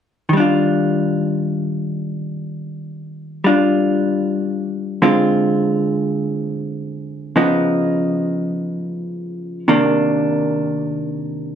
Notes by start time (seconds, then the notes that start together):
0.29 D#3 G3
0.37 D4 F4
3.44 G3 D4 F4
5.02 D3 G#3 C4 F4
7.36 C#3 F3 B3 D#4
9.68 C3 D#3 A#3 D4